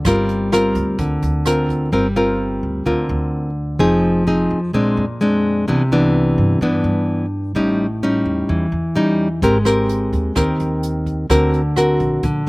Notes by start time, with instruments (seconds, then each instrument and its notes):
0.05 upright bass G1, nylon-string guitar G3 C4 F4 A#4, kick, cross-stick, closed hi-hat
0.29 closed hi-hat
0.52 nylon-string guitar C4 F4 A#4, cross-stick, closed hi-hat
0.75 upright bass D2, kick, closed hi-hat
0.98 upright bass D2, nylon-string guitar D3, kick, closed hi-hat
1.22 upright bass D2, closed hi-hat
1.45 nylon-string guitar C4 F4 A#4, cross-stick, closed hi-hat
1.69 kick, closed hi-hat
1.92 upright bass G1, nylon-string guitar G3 C4 F4 A#4
2.16 nylon-string guitar C4 F4 A#4
2.63 upright bass D2
2.86 upright bass D2, nylon-string guitar D3 C4 F4 A#4
3.09 upright bass D2
3.79 upright bass F1, nylon-string guitar F3 C4 D#4 G#4
4.27 nylon-string guitar C4 D#4 G#4
4.51 upright bass F2
4.73 upright bass A#1, nylon-string guitar A#2 G#3 C4 D4
4.97 upright bass F2
5.21 nylon-string guitar G#3 C4 D4
5.68 upright bass C2, nylon-string guitar C3 E3 B3 D4
5.92 nylon-string guitar E3 B3 D4
6.38 upright bass G2
6.61 upright bass G2, nylon-string guitar G2 E3 B3 D4
6.84 upright bass G2
7.55 upright bass A1, nylon-string guitar A2 G3 C#4 D#4
8.03 nylon-string guitar G3 C#4 D#4
8.25 upright bass E2
8.49 upright bass E2, nylon-string guitar E3
8.72 upright bass E2
8.96 nylon-string guitar G3 C#4 D#4
9.42 upright bass G#1, nylon-string guitar G#3 C4 G4 A#4, kick, closed hi-hat
9.65 nylon-string guitar C4 G4 A#4, cross-stick, closed hi-hat
9.89 closed hi-hat
10.13 upright bass D#2, kick, closed hi-hat
10.35 upright bass D#2, nylon-string guitar D#3 C4 G4 A#4, kick, cross-stick, closed hi-hat
10.60 upright bass D#2, closed hi-hat
10.83 closed hi-hat
11.06 kick, closed hi-hat
11.30 upright bass D2, nylon-string guitar D3 C4 F#4 A#4, kick, cross-stick, closed hi-hat
11.53 closed hi-hat
11.76 nylon-string guitar C4 F#4 A#4, cross-stick, closed hi-hat
12.00 upright bass A#1, kick, closed hi-hat
12.23 upright bass A#1, nylon-string guitar D3, kick, closed hi-hat